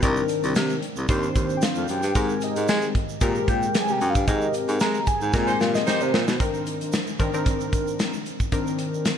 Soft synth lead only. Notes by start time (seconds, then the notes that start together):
1.57 G5
1.63 F5
1.90 G5
2.16 G#5
2.43 D#5
3.48 G5
3.75 G#5
3.92 G5
4.10 F5
4.27 D#5
4.81 A#5
5.07 G#5
5.22 G#5
5.61 F5
5.75 D#5
6.02 C5